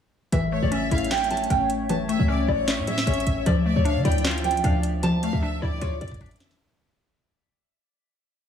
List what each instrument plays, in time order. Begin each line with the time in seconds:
0.32 808-style bass A1, synth pluck E3, analog synth pad A3 C#5 E5, nylon-string guitar E5, closed hi-hat
0.52 synth pluck A3, violin section C#5
0.62 808-style bass A1, nylon-string guitar D5
0.71 synth pluck C#4, violin section E5, closed hi-hat
0.91 808-style bass A1, synth pluck E4, nylon-string guitar E5, violin section F5, closed hi-hat
0.98 closed hi-hat
1.04 closed hi-hat
1.11 synth pluck E5, nylon-string guitar G5, snare, clap, closed hi-hat
1.18 closed hi-hat
1.24 closed hi-hat
1.31 nylon-string guitar A5, closed hi-hat
1.37 closed hi-hat
1.44 closed hi-hat
1.50 808-style bass A1, synth pluck C#4, nylon-string guitar G5, closed hi-hat
1.70 closed hi-hat
1.89 synth pluck E3, nylon-string guitar A5, closed hi-hat
2.09 synth pluck A3, violin section E5, closed hi-hat
2.19 808-style bass C#2, nylon-string guitar E5
2.28 synth pluck C#4, violin section D5
2.48 808-style bass A1, synth pluck E4, violin section C#5, nylon-string guitar D5
2.68 synth pluck E5, snare, clap, closed hi-hat
2.78 808-style bass A2
2.87 nylon-string guitar E5, violin section E5, closed hi-hat
2.98 snare
3.07 808-style bass A1, synth pluck C#4, nylon-string guitar C#5, closed hi-hat
3.14 closed hi-hat
3.20 closed hi-hat
3.27 808-style bass A1, closed hi-hat
3.46 808-style bass D2, analog synth pad F3 D5, synth pluck F3, nylon-string guitar D5, closed hi-hat
3.66 synth pluck A3, violin section D5
3.76 808-style bass D2, nylon-string guitar C#5
3.85 synth pluck D4, violin section F5, closed hi-hat
3.96 808-style bass D3
4.05 808-style bass D2, synth pluck E4, nylon-string guitar D5, violin section G5, closed hi-hat
4.12 closed hi-hat
4.18 closed hi-hat
4.24 synth pluck F4, nylon-string guitar F5, snare, clap, closed hi-hat
4.31 closed hi-hat
4.38 closed hi-hat
4.44 nylon-string guitar G5, closed hi-hat
4.51 closed hi-hat
4.57 closed hi-hat
4.64 808-style bass D2, synth pluck D4, nylon-string guitar F5, closed hi-hat
4.83 closed hi-hat
5.03 synth pluck F3, nylon-string guitar A5, closed hi-hat
5.23 synth pluck A3, violin section F5, closed hi-hat
5.33 808-style bass D2, nylon-string guitar E5
5.42 synth pluck D4, violin section E5
5.62 808-style bass D2, synth pluck E4, violin section D5, nylon-string guitar D5
5.81 808-style bass D2, synth pluck F4, nylon-string guitar C#5, closed hi-hat
6.01 808-style bass F2, violin section D5, nylon-string guitar D5, closed hi-hat
6.08 kick, closed hi-hat
6.14 closed hi-hat
6.21 synth pluck D4, nylon-string guitar E5, kick, closed hi-hat
6.26 closed hi-hat
6.31 closed hi-hat
6.36 closed hi-hat
6.40 violin section E5, snare, closed hi-hat
6.51 snare